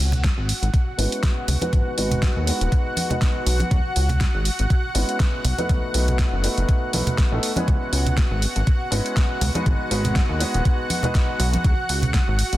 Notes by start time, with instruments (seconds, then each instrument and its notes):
Already playing: analog synth pad F#4 F#5
0.00 analog synth bass C#2
0.12 closed hi-hat, low conga
0.24 kick, snare, closed hi-hat
0.38 analog synth bass G#1
0.49 open hi-hat
0.62 analog synth bass G#1, closed hi-hat
0.74 kick, closed hi-hat
0.98 analog synth bass G#1, grand piano G#3 B3 C#4 E4 B4, open hi-hat
1.12 closed hi-hat
1.23 kick, snare, closed hi-hat
1.48 analog synth bass C#2, open hi-hat, low conga
1.61 grand piano G#3 B3 D#4 F#4 B4, closed hi-hat, high conga
1.73 analog synth bass G#1, kick, closed hi-hat
1.97 analog synth bass G#1, grand piano G#3 B3 D#4 F#4 B4, open hi-hat
2.11 closed hi-hat, low conga
2.22 kick, snare, closed hi-hat
2.36 analog synth bass D#2
2.46 grand piano G#3 B3 D#4 F#4 B4, open hi-hat
2.61 analog synth bass D#1, closed hi-hat
2.72 kick, closed hi-hat
2.97 open hi-hat, high conga
3.10 grand piano G#3 B3 D#4 F#4 B4, closed hi-hat, low conga
3.22 kick, snare, closed hi-hat
3.46 analog synth bass B1, open hi-hat
3.60 closed hi-hat, high conga
3.71 analog synth bass C#2, kick, closed hi-hat
3.96 analog synth bass C#2, open hi-hat
4.09 closed hi-hat, low conga
4.21 kick, snare, closed hi-hat
4.35 analog synth bass G#1
4.45 open hi-hat
4.59 analog synth bass G#1, closed hi-hat
4.70 kick, closed hi-hat
4.94 analog synth bass G#1, grand piano G#3 B3 C#4 E4 B4, open hi-hat
5.09 closed hi-hat
5.20 kick, snare, closed hi-hat
5.45 analog synth bass B1, open hi-hat, low conga
5.58 grand piano A3 B3 D#4 F#4 B4, closed hi-hat, high conga
5.69 analog synth bass B1, kick, closed hi-hat
5.94 analog synth bass B1, grand piano A3 B3 D#4 F#4 B4, open hi-hat
6.08 closed hi-hat, low conga
6.19 kick, snare, closed hi-hat
6.33 analog synth bass F#1
6.43 grand piano A3 B3 D#4 F#4 B4, open hi-hat
6.58 analog synth bass F#1, closed hi-hat
6.69 kick, closed hi-hat
6.93 analog synth bass B1, grand piano A3 B3 D#4 F#4 B4, open hi-hat, high conga
7.07 closed hi-hat, low conga
7.18 kick, snare, closed hi-hat
7.31 analog synth bass A1, grand piano A3 B3 D#4 F#4 A4
7.43 open hi-hat
7.56 grand piano G#3 B3 C#4 E4 B4, closed hi-hat, high conga
7.68 analog synth bass C#2, analog synth pad F#4 F#5, kick, closed hi-hat
7.93 analog synth bass C#2, open hi-hat
8.06 closed hi-hat, low conga
8.17 kick, snare, closed hi-hat
8.31 analog synth bass G#1
8.42 open hi-hat
8.56 analog synth bass G#1, closed hi-hat
8.67 kick, closed hi-hat
8.91 analog synth bass G#1, grand piano G#3 B3 C#4 E4 B4, open hi-hat
9.06 closed hi-hat
9.17 kick, snare, closed hi-hat
9.41 analog synth bass C#2, open hi-hat, low conga
9.55 grand piano G#3 B3 D#4 F#4 B4, closed hi-hat, high conga
9.66 analog synth bass G#1, kick, closed hi-hat
9.90 analog synth bass G#1, grand piano G#3 B3 D#4 F#4 B4, open hi-hat
10.04 closed hi-hat, low conga
10.16 kick, snare, closed hi-hat
10.29 analog synth bass D#2
10.39 grand piano G#3 B3 D#4 F#4 B4, open hi-hat
10.54 analog synth bass D#1, closed hi-hat
10.65 kick, closed hi-hat
10.90 open hi-hat, high conga
11.03 grand piano G#3 B3 D#4 F#4 B4, closed hi-hat, low conga
11.15 kick, snare, closed hi-hat
11.40 analog synth bass B1, open hi-hat
11.53 closed hi-hat, high conga
11.64 analog synth bass C#2, kick, closed hi-hat
11.89 analog synth bass C#2, open hi-hat
12.02 closed hi-hat, low conga
12.14 kick, snare, closed hi-hat
12.28 analog synth bass G#1
12.39 open hi-hat
12.53 analog synth bass G#1, closed hi-hat